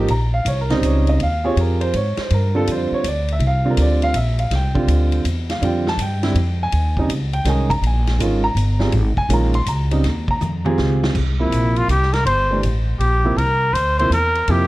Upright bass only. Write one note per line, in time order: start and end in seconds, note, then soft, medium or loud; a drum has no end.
0.09 0.44 A#1 medium
0.45 0.81 C2 medium
0.81 1.18 C#2 medium
1.19 1.55 D#2 medium
1.56 1.92 F2 medium
1.94 2.16 G#2 medium
2.18 muted upright bass stroke soft
2.31 2.66 G2 medium
2.67 2.90 F2 medium
2.92 muted upright bass stroke soft
3.04 3.39 D2 medium
3.39 3.76 C2 loud
3.77 4.13 D2 medium
4.14 4.50 A#1 medium
4.51 4.87 C2 medium
4.87 5.24 D2 medium
5.25 5.61 E2 loud
5.61 5.97 F2 medium
5.97 6.34 G2 medium
6.35 6.71 F2 medium
6.73 7.08 D#2 medium
7.09 7.44 C#2 medium
7.45 7.81 C2 medium
7.82 8.18 A#1 medium
8.19 8.54 G#1 loud
8.55 8.91 G1 medium
8.93 9.16 G#1 loud
9.29 9.65 A#1 medium
9.66 10.02 C#2 medium
10.05 10.40 D#2 medium
10.41 10.77 F2 medium
10.79 11.14 C#2 medium
11.15 11.51 C2 medium
11.51 11.87 A#1 medium
11.88 12.24 C2 medium
12.25 12.62 G1 medium
12.64 12.99 A1 medium
12.99 13.36 A#1 medium
13.36 13.72 C2 medium
13.73 14.09 D2 medium
14.10 14.47 E2 medium
14.48 14.67 F2 medium